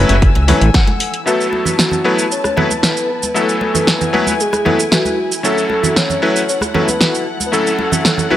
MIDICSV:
0, 0, Header, 1, 8, 480
1, 0, Start_track
1, 0, Key_signature, 3, "minor"
1, 0, Tempo, 521739
1, 1166, Time_signature, 4, 2, 24, 8
1, 7699, End_track
2, 0, Start_track
2, 0, Title_t, "String section"
2, 0, Program_c, 0, 48
2, 0, Note_on_c, 0, 69, 73
2, 0, Note_on_c, 0, 80, 71
2, 0, Note_on_c, 0, 88, 82
2, 1128, Note_off_c, 0, 88, 0
2, 1131, Note_off_c, 0, 69, 0
2, 1147, Note_off_c, 0, 80, 0
2, 1159, Note_on_c, 0, 71, 63
2, 1162, Note_on_c, 0, 64, 64
2, 1162, Note_on_c, 0, 81, 72
2, 3064, Note_off_c, 0, 81, 0
2, 3084, Note_on_c, 0, 80, 73
2, 4965, Note_off_c, 0, 71, 0
2, 4985, Note_off_c, 0, 80, 0
2, 5001, Note_on_c, 0, 69, 63
2, 5004, Note_on_c, 0, 78, 73
2, 7699, Note_off_c, 0, 64, 0
2, 7699, Note_off_c, 0, 69, 0
2, 7699, Note_off_c, 0, 78, 0
2, 7699, End_track
3, 0, Start_track
3, 0, Title_t, "Clean electric guitar"
3, 0, Program_c, 1, 27
3, 81, Note_on_c, 1, 64, 84
3, 88, Note_on_c, 1, 66, 75
3, 93, Note_on_c, 1, 69, 90
3, 263, Note_off_c, 1, 64, 0
3, 267, Note_off_c, 1, 66, 0
3, 269, Note_off_c, 1, 69, 0
3, 439, Note_on_c, 1, 64, 106
3, 443, Note_on_c, 1, 66, 97
3, 446, Note_on_c, 1, 73, 71
3, 449, Note_on_c, 1, 69, 120
3, 623, Note_off_c, 1, 64, 0
3, 626, Note_off_c, 1, 66, 0
3, 628, Note_off_c, 1, 69, 0
3, 668, Note_off_c, 1, 73, 0
3, 684, Note_on_c, 1, 78, 74
3, 1131, Note_off_c, 1, 78, 0
3, 1158, Note_on_c, 1, 64, 96
3, 1163, Note_on_c, 1, 69, 89
3, 1168, Note_on_c, 1, 71, 109
3, 1343, Note_off_c, 1, 64, 0
3, 1345, Note_off_c, 1, 69, 0
3, 1348, Note_off_c, 1, 71, 0
3, 1519, Note_on_c, 1, 64, 74
3, 1524, Note_on_c, 1, 69, 67
3, 1529, Note_on_c, 1, 71, 83
3, 1641, Note_off_c, 1, 64, 0
3, 1644, Note_off_c, 1, 69, 0
3, 1646, Note_off_c, 1, 71, 0
3, 1878, Note_on_c, 1, 64, 71
3, 1883, Note_on_c, 1, 69, 66
3, 1889, Note_on_c, 1, 71, 79
3, 2122, Note_off_c, 1, 64, 0
3, 2124, Note_off_c, 1, 69, 0
3, 2127, Note_off_c, 1, 71, 0
3, 2358, Note_on_c, 1, 64, 94
3, 2363, Note_on_c, 1, 69, 86
3, 2369, Note_on_c, 1, 73, 105
3, 2484, Note_off_c, 1, 64, 0
3, 2486, Note_off_c, 1, 69, 0
3, 2489, Note_off_c, 1, 73, 0
3, 2598, Note_on_c, 1, 64, 75
3, 2603, Note_on_c, 1, 69, 67
3, 2609, Note_on_c, 1, 71, 83
3, 2842, Note_off_c, 1, 64, 0
3, 2844, Note_off_c, 1, 69, 0
3, 2847, Note_off_c, 1, 71, 0
3, 3078, Note_on_c, 1, 64, 96
3, 3084, Note_on_c, 1, 69, 89
3, 3089, Note_on_c, 1, 71, 109
3, 3263, Note_off_c, 1, 64, 0
3, 3265, Note_off_c, 1, 69, 0
3, 3268, Note_off_c, 1, 71, 0
3, 3440, Note_on_c, 1, 64, 78
3, 3444, Note_on_c, 1, 69, 70
3, 3451, Note_on_c, 1, 71, 87
3, 3562, Note_off_c, 1, 64, 0
3, 3564, Note_off_c, 1, 69, 0
3, 3567, Note_off_c, 1, 71, 0
3, 3799, Note_on_c, 1, 64, 73
3, 3804, Note_on_c, 1, 69, 68
3, 3810, Note_on_c, 1, 71, 79
3, 4042, Note_off_c, 1, 64, 0
3, 4045, Note_off_c, 1, 69, 0
3, 4048, Note_off_c, 1, 71, 0
3, 4278, Note_on_c, 1, 64, 99
3, 4284, Note_on_c, 1, 69, 90
3, 4289, Note_on_c, 1, 71, 104
3, 4403, Note_off_c, 1, 64, 0
3, 4407, Note_off_c, 1, 69, 0
3, 4409, Note_off_c, 1, 71, 0
3, 4518, Note_on_c, 1, 64, 79
3, 4524, Note_on_c, 1, 69, 67
3, 4529, Note_on_c, 1, 71, 87
3, 4762, Note_off_c, 1, 64, 0
3, 4765, Note_off_c, 1, 69, 0
3, 4767, Note_off_c, 1, 71, 0
3, 4997, Note_on_c, 1, 64, 96
3, 5003, Note_on_c, 1, 66, 90
3, 5008, Note_on_c, 1, 69, 108
3, 5182, Note_off_c, 1, 64, 0
3, 5185, Note_off_c, 1, 66, 0
3, 5188, Note_off_c, 1, 69, 0
3, 5360, Note_on_c, 1, 64, 76
3, 5366, Note_on_c, 1, 66, 73
3, 5371, Note_on_c, 1, 69, 84
3, 5482, Note_off_c, 1, 64, 0
3, 5485, Note_off_c, 1, 66, 0
3, 5487, Note_off_c, 1, 69, 0
3, 5720, Note_on_c, 1, 64, 75
3, 5725, Note_on_c, 1, 66, 67
3, 5729, Note_on_c, 1, 69, 79
3, 5963, Note_off_c, 1, 64, 0
3, 5965, Note_off_c, 1, 66, 0
3, 5967, Note_off_c, 1, 69, 0
3, 6199, Note_on_c, 1, 64, 98
3, 6206, Note_on_c, 1, 66, 87
3, 6211, Note_on_c, 1, 69, 107
3, 6324, Note_off_c, 1, 64, 0
3, 6327, Note_off_c, 1, 66, 0
3, 6330, Note_off_c, 1, 69, 0
3, 6441, Note_on_c, 1, 64, 75
3, 6446, Note_on_c, 1, 66, 70
3, 6452, Note_on_c, 1, 69, 85
3, 6683, Note_off_c, 1, 64, 0
3, 6686, Note_off_c, 1, 66, 0
3, 6688, Note_off_c, 1, 69, 0
3, 6920, Note_on_c, 1, 64, 100
3, 6925, Note_on_c, 1, 66, 90
3, 6931, Note_on_c, 1, 69, 105
3, 7104, Note_off_c, 1, 64, 0
3, 7106, Note_off_c, 1, 66, 0
3, 7109, Note_off_c, 1, 69, 0
3, 7283, Note_on_c, 1, 64, 76
3, 7288, Note_on_c, 1, 66, 67
3, 7293, Note_on_c, 1, 69, 83
3, 7403, Note_off_c, 1, 64, 0
3, 7406, Note_off_c, 1, 66, 0
3, 7408, Note_off_c, 1, 69, 0
3, 7641, Note_on_c, 1, 64, 74
3, 7646, Note_on_c, 1, 66, 67
3, 7652, Note_on_c, 1, 69, 83
3, 7699, Note_off_c, 1, 64, 0
3, 7699, Note_off_c, 1, 66, 0
3, 7699, Note_off_c, 1, 69, 0
3, 7699, End_track
4, 0, Start_track
4, 0, Title_t, "Soft synth lead"
4, 0, Program_c, 2, 80
4, 1165, Note_on_c, 2, 66, 97
4, 1612, Note_off_c, 2, 66, 0
4, 1645, Note_on_c, 2, 66, 89
4, 2091, Note_off_c, 2, 66, 0
4, 2129, Note_on_c, 2, 73, 100
4, 2366, Note_on_c, 2, 71, 109
4, 2380, Note_off_c, 2, 73, 0
4, 3088, Note_on_c, 2, 69, 98
4, 3102, Note_off_c, 2, 71, 0
4, 3327, Note_off_c, 2, 69, 0
4, 3332, Note_on_c, 2, 69, 86
4, 3571, Note_on_c, 2, 71, 91
4, 3585, Note_off_c, 2, 69, 0
4, 3805, Note_off_c, 2, 71, 0
4, 3810, Note_on_c, 2, 71, 92
4, 4055, Note_on_c, 2, 68, 88
4, 4069, Note_off_c, 2, 71, 0
4, 4292, Note_on_c, 2, 69, 84
4, 4306, Note_off_c, 2, 68, 0
4, 4531, Note_on_c, 2, 66, 87
4, 4545, Note_off_c, 2, 69, 0
4, 4890, Note_off_c, 2, 66, 0
4, 5011, Note_on_c, 2, 69, 97
4, 5489, Note_on_c, 2, 73, 95
4, 5503, Note_off_c, 2, 69, 0
4, 5964, Note_off_c, 2, 73, 0
4, 5970, Note_on_c, 2, 73, 91
4, 6077, Note_off_c, 2, 73, 0
4, 6210, Note_on_c, 2, 71, 89
4, 6654, Note_off_c, 2, 71, 0
4, 6864, Note_on_c, 2, 71, 76
4, 6922, Note_on_c, 2, 69, 108
4, 6936, Note_off_c, 2, 71, 0
4, 7156, Note_off_c, 2, 69, 0
4, 7161, Note_on_c, 2, 69, 102
4, 7610, Note_off_c, 2, 69, 0
4, 7699, End_track
5, 0, Start_track
5, 0, Title_t, "Electric grand piano"
5, 0, Program_c, 3, 2
5, 0, Note_on_c, 3, 54, 96
5, 0, Note_on_c, 3, 57, 89
5, 0, Note_on_c, 3, 61, 88
5, 0, Note_on_c, 3, 64, 88
5, 0, Note_on_c, 3, 71, 108
5, 128, Note_off_c, 3, 54, 0
5, 130, Note_off_c, 3, 57, 0
5, 130, Note_off_c, 3, 61, 0
5, 131, Note_off_c, 3, 64, 0
5, 132, Note_off_c, 3, 71, 0
5, 440, Note_on_c, 3, 54, 86
5, 442, Note_on_c, 3, 57, 78
5, 445, Note_on_c, 3, 61, 75
5, 448, Note_on_c, 3, 64, 75
5, 450, Note_on_c, 3, 71, 94
5, 547, Note_off_c, 3, 54, 0
5, 548, Note_off_c, 3, 57, 0
5, 549, Note_off_c, 3, 61, 0
5, 551, Note_off_c, 3, 64, 0
5, 552, Note_off_c, 3, 71, 0
5, 1155, Note_on_c, 3, 54, 69
5, 1161, Note_on_c, 3, 57, 63
5, 1165, Note_on_c, 3, 59, 63
5, 1170, Note_on_c, 3, 64, 65
5, 1174, Note_on_c, 3, 69, 78
5, 1852, Note_off_c, 3, 54, 0
5, 1855, Note_off_c, 3, 57, 0
5, 1857, Note_off_c, 3, 59, 0
5, 1859, Note_off_c, 3, 64, 0
5, 1861, Note_off_c, 3, 69, 0
5, 1880, Note_on_c, 3, 54, 85
5, 1881, Note_on_c, 3, 57, 78
5, 1885, Note_on_c, 3, 59, 79
5, 1888, Note_on_c, 3, 64, 76
5, 1889, Note_on_c, 3, 71, 90
5, 2048, Note_off_c, 3, 54, 0
5, 2048, Note_off_c, 3, 57, 0
5, 2050, Note_off_c, 3, 59, 0
5, 2052, Note_off_c, 3, 64, 0
5, 2053, Note_off_c, 3, 71, 0
5, 2360, Note_on_c, 3, 54, 74
5, 2363, Note_on_c, 3, 57, 69
5, 2365, Note_on_c, 3, 59, 68
5, 2367, Note_on_c, 3, 64, 67
5, 2369, Note_on_c, 3, 71, 83
5, 2467, Note_off_c, 3, 54, 0
5, 2468, Note_off_c, 3, 57, 0
5, 2469, Note_off_c, 3, 59, 0
5, 2470, Note_off_c, 3, 64, 0
5, 2471, Note_off_c, 3, 71, 0
5, 3076, Note_on_c, 3, 54, 72
5, 3080, Note_on_c, 3, 57, 64
5, 3085, Note_on_c, 3, 59, 64
5, 3090, Note_on_c, 3, 64, 65
5, 3095, Note_on_c, 3, 69, 79
5, 3772, Note_off_c, 3, 54, 0
5, 3774, Note_off_c, 3, 57, 0
5, 3777, Note_off_c, 3, 59, 0
5, 3779, Note_off_c, 3, 64, 0
5, 3782, Note_off_c, 3, 69, 0
5, 3798, Note_on_c, 3, 54, 86
5, 3801, Note_on_c, 3, 57, 81
5, 3804, Note_on_c, 3, 59, 79
5, 3806, Note_on_c, 3, 64, 76
5, 3807, Note_on_c, 3, 71, 95
5, 3967, Note_off_c, 3, 54, 0
5, 3969, Note_off_c, 3, 57, 0
5, 3970, Note_off_c, 3, 59, 0
5, 3971, Note_off_c, 3, 64, 0
5, 3971, Note_off_c, 3, 71, 0
5, 4278, Note_on_c, 3, 54, 72
5, 4280, Note_on_c, 3, 57, 70
5, 4283, Note_on_c, 3, 59, 70
5, 4285, Note_on_c, 3, 64, 68
5, 4287, Note_on_c, 3, 71, 83
5, 4386, Note_off_c, 3, 54, 0
5, 4387, Note_off_c, 3, 57, 0
5, 4388, Note_off_c, 3, 59, 0
5, 4389, Note_off_c, 3, 64, 0
5, 4391, Note_off_c, 3, 71, 0
5, 4997, Note_on_c, 3, 54, 72
5, 5003, Note_on_c, 3, 57, 66
5, 5006, Note_on_c, 3, 61, 65
5, 5011, Note_on_c, 3, 64, 65
5, 5017, Note_on_c, 3, 69, 81
5, 5693, Note_off_c, 3, 54, 0
5, 5696, Note_off_c, 3, 57, 0
5, 5697, Note_off_c, 3, 61, 0
5, 5700, Note_off_c, 3, 64, 0
5, 5703, Note_off_c, 3, 69, 0
5, 5722, Note_on_c, 3, 54, 89
5, 5723, Note_on_c, 3, 57, 79
5, 5726, Note_on_c, 3, 61, 83
5, 5728, Note_on_c, 3, 64, 82
5, 5729, Note_on_c, 3, 71, 95
5, 5889, Note_off_c, 3, 54, 0
5, 5889, Note_off_c, 3, 57, 0
5, 5891, Note_off_c, 3, 61, 0
5, 5892, Note_off_c, 3, 64, 0
5, 5893, Note_off_c, 3, 71, 0
5, 6203, Note_on_c, 3, 54, 76
5, 6204, Note_on_c, 3, 57, 70
5, 6207, Note_on_c, 3, 61, 71
5, 6209, Note_on_c, 3, 64, 71
5, 6211, Note_on_c, 3, 71, 83
5, 6308, Note_off_c, 3, 54, 0
5, 6309, Note_off_c, 3, 57, 0
5, 6310, Note_off_c, 3, 61, 0
5, 6311, Note_off_c, 3, 64, 0
5, 6312, Note_off_c, 3, 71, 0
5, 6916, Note_on_c, 3, 54, 71
5, 6920, Note_on_c, 3, 57, 66
5, 6926, Note_on_c, 3, 61, 65
5, 6930, Note_on_c, 3, 64, 65
5, 6935, Note_on_c, 3, 69, 83
5, 7613, Note_off_c, 3, 54, 0
5, 7614, Note_off_c, 3, 57, 0
5, 7618, Note_off_c, 3, 61, 0
5, 7619, Note_off_c, 3, 64, 0
5, 7622, Note_off_c, 3, 69, 0
5, 7639, Note_on_c, 3, 54, 86
5, 7641, Note_on_c, 3, 57, 80
5, 7644, Note_on_c, 3, 61, 77
5, 7646, Note_on_c, 3, 64, 80
5, 7649, Note_on_c, 3, 71, 94
5, 7699, Note_off_c, 3, 54, 0
5, 7699, Note_off_c, 3, 57, 0
5, 7699, Note_off_c, 3, 61, 0
5, 7699, Note_off_c, 3, 64, 0
5, 7699, Note_off_c, 3, 71, 0
5, 7699, End_track
6, 0, Start_track
6, 0, Title_t, "Analog synth bass"
6, 0, Program_c, 4, 38
6, 84, Note_on_c, 4, 30, 91
6, 326, Note_on_c, 4, 37, 81
6, 339, Note_off_c, 4, 30, 0
6, 493, Note_off_c, 4, 37, 0
6, 564, Note_on_c, 4, 33, 102
6, 648, Note_off_c, 4, 33, 0
6, 7699, End_track
7, 0, Start_track
7, 0, Title_t, "Muted clean electric guitar strokes"
7, 799, Note_on_c, 9, 29, 88
7, 891, Note_off_c, 9, 29, 0
7, 920, Note_on_c, 9, 29, 33
7, 1012, Note_off_c, 9, 29, 0
7, 1760, Note_on_c, 9, 29, 28
7, 1852, Note_off_c, 9, 29, 0
7, 3681, Note_on_c, 9, 29, 29
7, 3773, Note_off_c, 9, 29, 0
7, 5601, Note_on_c, 9, 29, 30
7, 5693, Note_off_c, 9, 29, 0
7, 7522, Note_on_c, 9, 29, 29
7, 7614, Note_off_c, 9, 29, 0
7, 7699, End_track
8, 0, Start_track
8, 0, Title_t, "Drums"
8, 85, Note_on_c, 9, 42, 51
8, 92, Note_on_c, 9, 63, 72
8, 177, Note_off_c, 9, 42, 0
8, 184, Note_off_c, 9, 63, 0
8, 204, Note_on_c, 9, 36, 109
8, 204, Note_on_c, 9, 42, 55
8, 296, Note_off_c, 9, 36, 0
8, 296, Note_off_c, 9, 42, 0
8, 325, Note_on_c, 9, 42, 27
8, 330, Note_on_c, 9, 62, 68
8, 417, Note_off_c, 9, 42, 0
8, 422, Note_off_c, 9, 62, 0
8, 443, Note_on_c, 9, 46, 98
8, 445, Note_on_c, 9, 63, 60
8, 456, Note_on_c, 9, 64, 94
8, 535, Note_off_c, 9, 46, 0
8, 537, Note_off_c, 9, 63, 0
8, 548, Note_off_c, 9, 64, 0
8, 566, Note_on_c, 9, 42, 53
8, 658, Note_off_c, 9, 42, 0
8, 683, Note_on_c, 9, 36, 117
8, 683, Note_on_c, 9, 42, 55
8, 684, Note_on_c, 9, 38, 115
8, 775, Note_off_c, 9, 36, 0
8, 775, Note_off_c, 9, 42, 0
8, 776, Note_off_c, 9, 38, 0
8, 804, Note_on_c, 9, 42, 28
8, 808, Note_on_c, 9, 63, 81
8, 896, Note_off_c, 9, 42, 0
8, 900, Note_off_c, 9, 63, 0
8, 922, Note_on_c, 9, 46, 94
8, 1014, Note_off_c, 9, 46, 0
8, 1045, Note_on_c, 9, 42, 55
8, 1137, Note_off_c, 9, 42, 0
8, 1171, Note_on_c, 9, 82, 48
8, 1263, Note_off_c, 9, 82, 0
8, 1294, Note_on_c, 9, 82, 29
8, 1386, Note_off_c, 9, 82, 0
8, 1404, Note_on_c, 9, 62, 57
8, 1496, Note_off_c, 9, 62, 0
8, 1521, Note_on_c, 9, 64, 65
8, 1531, Note_on_c, 9, 82, 57
8, 1613, Note_off_c, 9, 64, 0
8, 1623, Note_off_c, 9, 82, 0
8, 1645, Note_on_c, 9, 38, 105
8, 1651, Note_on_c, 9, 82, 49
8, 1737, Note_off_c, 9, 38, 0
8, 1743, Note_off_c, 9, 82, 0
8, 1760, Note_on_c, 9, 64, 65
8, 1774, Note_on_c, 9, 82, 29
8, 1852, Note_off_c, 9, 64, 0
8, 1866, Note_off_c, 9, 82, 0
8, 2011, Note_on_c, 9, 82, 57
8, 2103, Note_off_c, 9, 82, 0
8, 2131, Note_on_c, 9, 82, 50
8, 2223, Note_off_c, 9, 82, 0
8, 2246, Note_on_c, 9, 37, 68
8, 2251, Note_on_c, 9, 63, 54
8, 2253, Note_on_c, 9, 82, 28
8, 2338, Note_off_c, 9, 37, 0
8, 2343, Note_off_c, 9, 63, 0
8, 2345, Note_off_c, 9, 82, 0
8, 2367, Note_on_c, 9, 64, 79
8, 2368, Note_on_c, 9, 62, 53
8, 2459, Note_off_c, 9, 64, 0
8, 2460, Note_off_c, 9, 62, 0
8, 2487, Note_on_c, 9, 63, 53
8, 2491, Note_on_c, 9, 82, 59
8, 2579, Note_off_c, 9, 63, 0
8, 2583, Note_off_c, 9, 82, 0
8, 2604, Note_on_c, 9, 38, 102
8, 2610, Note_on_c, 9, 82, 47
8, 2696, Note_off_c, 9, 38, 0
8, 2702, Note_off_c, 9, 82, 0
8, 2732, Note_on_c, 9, 82, 29
8, 2824, Note_off_c, 9, 82, 0
8, 2970, Note_on_c, 9, 82, 57
8, 2972, Note_on_c, 9, 63, 54
8, 3062, Note_off_c, 9, 82, 0
8, 3064, Note_off_c, 9, 63, 0
8, 3090, Note_on_c, 9, 82, 46
8, 3182, Note_off_c, 9, 82, 0
8, 3210, Note_on_c, 9, 82, 28
8, 3302, Note_off_c, 9, 82, 0
8, 3322, Note_on_c, 9, 62, 54
8, 3414, Note_off_c, 9, 62, 0
8, 3446, Note_on_c, 9, 64, 71
8, 3451, Note_on_c, 9, 82, 56
8, 3538, Note_off_c, 9, 64, 0
8, 3543, Note_off_c, 9, 82, 0
8, 3563, Note_on_c, 9, 38, 105
8, 3569, Note_on_c, 9, 82, 46
8, 3655, Note_off_c, 9, 38, 0
8, 3661, Note_off_c, 9, 82, 0
8, 3691, Note_on_c, 9, 64, 72
8, 3691, Note_on_c, 9, 82, 29
8, 3783, Note_off_c, 9, 64, 0
8, 3783, Note_off_c, 9, 82, 0
8, 3804, Note_on_c, 9, 63, 55
8, 3896, Note_off_c, 9, 63, 0
8, 3925, Note_on_c, 9, 63, 77
8, 3932, Note_on_c, 9, 82, 55
8, 4017, Note_off_c, 9, 63, 0
8, 4024, Note_off_c, 9, 82, 0
8, 4051, Note_on_c, 9, 82, 47
8, 4143, Note_off_c, 9, 82, 0
8, 4166, Note_on_c, 9, 62, 57
8, 4167, Note_on_c, 9, 37, 66
8, 4174, Note_on_c, 9, 82, 29
8, 4258, Note_off_c, 9, 62, 0
8, 4259, Note_off_c, 9, 37, 0
8, 4266, Note_off_c, 9, 82, 0
8, 4284, Note_on_c, 9, 63, 55
8, 4288, Note_on_c, 9, 64, 88
8, 4376, Note_off_c, 9, 63, 0
8, 4380, Note_off_c, 9, 64, 0
8, 4412, Note_on_c, 9, 82, 57
8, 4504, Note_off_c, 9, 82, 0
8, 4525, Note_on_c, 9, 38, 105
8, 4531, Note_on_c, 9, 82, 46
8, 4617, Note_off_c, 9, 38, 0
8, 4623, Note_off_c, 9, 82, 0
8, 4647, Note_on_c, 9, 63, 68
8, 4653, Note_on_c, 9, 82, 29
8, 4739, Note_off_c, 9, 63, 0
8, 4745, Note_off_c, 9, 82, 0
8, 4892, Note_on_c, 9, 82, 54
8, 4984, Note_off_c, 9, 82, 0
8, 5010, Note_on_c, 9, 82, 47
8, 5102, Note_off_c, 9, 82, 0
8, 5132, Note_on_c, 9, 82, 27
8, 5224, Note_off_c, 9, 82, 0
8, 5241, Note_on_c, 9, 62, 55
8, 5333, Note_off_c, 9, 62, 0
8, 5366, Note_on_c, 9, 64, 65
8, 5374, Note_on_c, 9, 82, 57
8, 5458, Note_off_c, 9, 64, 0
8, 5466, Note_off_c, 9, 82, 0
8, 5486, Note_on_c, 9, 38, 106
8, 5492, Note_on_c, 9, 82, 47
8, 5578, Note_off_c, 9, 38, 0
8, 5584, Note_off_c, 9, 82, 0
8, 5609, Note_on_c, 9, 64, 63
8, 5614, Note_on_c, 9, 82, 28
8, 5701, Note_off_c, 9, 64, 0
8, 5706, Note_off_c, 9, 82, 0
8, 5853, Note_on_c, 9, 82, 53
8, 5945, Note_off_c, 9, 82, 0
8, 5971, Note_on_c, 9, 82, 48
8, 6063, Note_off_c, 9, 82, 0
8, 6081, Note_on_c, 9, 63, 65
8, 6087, Note_on_c, 9, 37, 69
8, 6094, Note_on_c, 9, 82, 29
8, 6173, Note_off_c, 9, 63, 0
8, 6179, Note_off_c, 9, 37, 0
8, 6186, Note_off_c, 9, 82, 0
8, 6206, Note_on_c, 9, 62, 55
8, 6207, Note_on_c, 9, 64, 84
8, 6298, Note_off_c, 9, 62, 0
8, 6299, Note_off_c, 9, 64, 0
8, 6329, Note_on_c, 9, 63, 61
8, 6333, Note_on_c, 9, 82, 55
8, 6421, Note_off_c, 9, 63, 0
8, 6425, Note_off_c, 9, 82, 0
8, 6445, Note_on_c, 9, 38, 107
8, 6451, Note_on_c, 9, 82, 46
8, 6537, Note_off_c, 9, 38, 0
8, 6543, Note_off_c, 9, 82, 0
8, 6575, Note_on_c, 9, 82, 28
8, 6667, Note_off_c, 9, 82, 0
8, 6810, Note_on_c, 9, 63, 60
8, 6814, Note_on_c, 9, 82, 56
8, 6902, Note_off_c, 9, 63, 0
8, 6906, Note_off_c, 9, 82, 0
8, 6930, Note_on_c, 9, 82, 48
8, 7022, Note_off_c, 9, 82, 0
8, 7054, Note_on_c, 9, 82, 28
8, 7146, Note_off_c, 9, 82, 0
8, 7163, Note_on_c, 9, 62, 59
8, 7255, Note_off_c, 9, 62, 0
8, 7285, Note_on_c, 9, 64, 75
8, 7294, Note_on_c, 9, 82, 59
8, 7377, Note_off_c, 9, 64, 0
8, 7386, Note_off_c, 9, 82, 0
8, 7405, Note_on_c, 9, 38, 100
8, 7411, Note_on_c, 9, 82, 46
8, 7497, Note_off_c, 9, 38, 0
8, 7503, Note_off_c, 9, 82, 0
8, 7521, Note_on_c, 9, 64, 64
8, 7533, Note_on_c, 9, 82, 29
8, 7613, Note_off_c, 9, 64, 0
8, 7625, Note_off_c, 9, 82, 0
8, 7642, Note_on_c, 9, 63, 60
8, 7699, Note_off_c, 9, 63, 0
8, 7699, End_track
0, 0, End_of_file